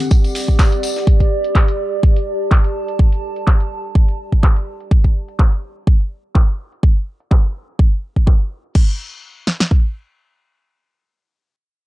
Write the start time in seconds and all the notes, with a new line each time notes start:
Already playing: C4 G4 D5 F#5
0.00 closed hi-hat, tambourine
0.11 kick, closed hi-hat, tambourine
0.24 closed hi-hat, tambourine
0.35 open hi-hat, tambourine
0.48 kick
0.59 kick, snare, clap, closed hi-hat, tambourine
0.72 closed hi-hat
0.83 open hi-hat, tambourine
0.96 snare, closed hi-hat, tambourine
1.07 kick, closed hi-hat
1.20 kick, closed hi-hat
1.44 closed hi-hat
1.55 kick, clap, closed hi-hat
1.68 closed hi-hat
2.02 A5, kick, closed hi-hat
2.16 closed hi-hat
2.51 kick, clap, closed hi-hat
2.64 closed hi-hat
2.88 closed hi-hat
2.99 kick, closed hi-hat
3.12 closed hi-hat
3.36 closed hi-hat
3.47 kick, clap, closed hi-hat
3.60 closed hi-hat
3.95 kick, closed hi-hat
4.08 closed hi-hat
4.32 kick
4.43 kick, clap, closed hi-hat
4.56 closed hi-hat
4.80 closed hi-hat
4.91 kick, closed hi-hat
5.04 kick, closed hi-hat
5.28 closed hi-hat
5.39 kick, clap
5.52 closed hi-hat
5.87 kick, closed hi-hat
6.00 closed hi-hat
6.35 kick, clap
6.48 closed hi-hat
6.72 closed hi-hat
6.83 kick
6.96 closed hi-hat
7.20 closed hi-hat
7.31 kick, clap
7.44 closed hi-hat
7.79 kick
7.92 closed hi-hat
8.16 kick
8.27 kick, clap
8.40 closed hi-hat
8.64 closed hi-hat
8.75 kick, crash
9.47 snare
9.60 snare
9.71 kick